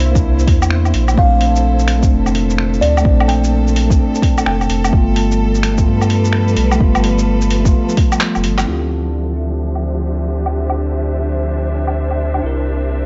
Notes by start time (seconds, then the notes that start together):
Already playing: C2 C3 A#3 D4 E4 C5
0.00 open hi-hat
0.11 A#3 D4, kick, shaker
0.19 E4
0.39 shaker
0.47 E2, kick, open hi-hat
0.62 low woodblock, shaker
0.70 finger snap
0.85 low woodblock, shaker
0.94 A#1, open hi-hat
1.08 low woodblock, shaker
1.14 A#1 A#2 A3 C4, kick
1.19 D4 F5
1.41 open hi-hat
1.46 A4
1.56 shaker
1.79 shaker
1.88 finger snap, open hi-hat
1.99 A3 C4, kick
2.03 D4, shaker
2.12 F1
2.26 low woodblock, shaker
2.35 open hi-hat
2.50 shaker
2.58 finger snap
2.74 shaker
2.81 D2 D5, open hi-hat
2.97 A3, low woodblock, shaker
3.05 A#1 C4, kick
3.09 D4
3.20 low woodblock
3.28 G5, open hi-hat
3.44 shaker
3.67 shaker
3.76 open hi-hat
3.86 A3 C4
3.90 D4, kick, shaker
4.15 shaker
4.22 kick, open hi-hat
4.38 low woodblock, shaker
4.46 F1 G5, finger snap
4.61 low woodblock, shaker
4.70 F1, open hi-hat
4.84 low woodblock, shaker
4.89 G3 A3 B3, kick
4.93 G1
4.97 F4
5.16 open hi-hat
5.31 shaker
5.55 shaker
5.63 finger snap, open hi-hat
5.72 F3 A3 B4
5.78 B3, kick, shaker
5.82 F4
5.87 G2
6.01 low woodblock, shaker
6.10 open hi-hat
6.24 shaker
6.33 finger snap
6.48 shaker
6.57 B1, open hi-hat
6.71 A3, low woodblock, shaker
6.79 G1 B3 F4, kick
6.95 low woodblock, shaker
7.04 open hi-hat
7.18 shaker
7.41 shaker
7.50 open hi-hat
7.60 A3
7.65 B3 F4, kick, shaker
7.89 shaker
7.97 kick, open hi-hat
8.12 low woodblock, shaker
8.20 finger snap, clap
8.35 F1, low woodblock, shaker
8.44 G1, open hi-hat
8.58 clap, low woodblock, shaker
8.63 C4 E4
8.67 D2 D3 F4 G4
8.95 D4
9.10 G4
9.19 E5
9.44 C5
9.75 low woodblock
10.46 low woodblock
10.70 low woodblock
11.87 low woodblock
12.11 low woodblock
12.34 low woodblock
12.39 C3 D4 E4
12.43 C2 A#4
12.71 A#3